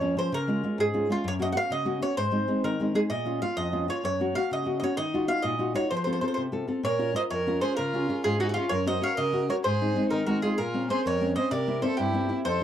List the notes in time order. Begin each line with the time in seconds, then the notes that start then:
Already playing: F2 C#5
0.01 F3 A#3 C#4
0.17 F3 A#3 C#4 C5
0.32 C#3 A#4
0.48 G#3 C#4 F4
0.63 G#3 C#4 F4
0.78 G#2 G#4
0.94 G#3 C#4 F4
1.09 G#3 C#4 F4
1.24 F#2 C#5
1.39 A#3 C#4 F#4 D#5
1.52 A#3 C#4 F#4 F#5
1.57 F5
1.70 C#3 D#5
1.85 A#3 C#4 F#4
2.02 A#3 C#4 F#4 C#5
2.17 G#2 C5
2.31 G#3 C4 D#4
2.48 G#3 C4 D#4
2.64 D#3 A#4
2.80 G#3 C4 D#4
2.94 G#3 C4 D#4 G#4
3.10 A#2 D#5
3.25 A#3 C#4 F4
3.42 A#3 C#4 F4 F5
3.57 F2 D#5
3.72 A#3 C#4 F4
3.88 A#3 C#4 F4 C#5
4.04 F#2 C#5
4.20 A#3 C#4 F#4
4.35 A#3 C#4 F#4 F5
4.51 C#3 D#5
4.65 A#3 C#4 F#4
4.80 A#3 C#4 F#4 C#5 D#5
4.97 D#3 D#5
5.14 D#4 F4 F#4
5.28 D#4 F4 F#4 F5
5.42 A#2 D#5
5.59 D#4 F4 F#4
5.74 D#4 F4 F#4 C#5
5.91 F3 C5
5.97 C5
6.04 C4 F4 A4 C5
6.13 C5
6.21 C4 F4 A4 C5
6.28 C5
6.34 C3 C5
6.52 C4 F4 A4
6.68 C4 F4 A4
6.83 A#2 A#4 C#5
6.99 C#4 F4 A#4
7.13 C#4 F4 A#4 C5 D#5
7.31 F2 A#4 C#5
7.47 C#4 F4 A#4
7.61 C#4 F4 G#4 A#4 C5
7.77 C#3 F4 A#4
7.93 C#4 F4 G#4
8.09 C#4 F4 G#4
8.24 G#2 F4 G#4
8.40 C#4 D#4 F4 F#4 G#4
8.49 D#4 F#4
8.54 C#4 F4 G#4
8.69 F#2 A#4 C#5
8.86 C#4 F#4 A#4 C5 D#5
9.02 C#4 F#4 A#4 C#5 F5
9.17 C#3 A#4 D#5
9.33 C#4 F#4 A#4
9.49 C#4 F#4 A#4 C#5
9.64 G#2 G#4 C5
9.81 G#3 C4 D#4
9.96 G#3 C4 D#4
10.10 D#3 D#4 A#4
10.27 G#3 C4 D#4 F#4 A#4
10.42 G#3 C4 D#4 F4 G#4
10.58 A#2 F4 A#4
10.74 A#3 C4 C#4
10.90 A#3 C4 C#4 G#4 C5
11.05 F2 A#4 C#5
11.21 A#3 C4 C#4
11.36 A#3 C4 C#4 C5 D#5
11.51 C3 A#4 D5
11.67 A#3 C4 E4
11.82 A#3 C4 E4 A4 C5
11.97 G2 E4 G4
12.13 A#3 C4 E4
12.29 A#3 C4 E4
12.45 F2 A4 C5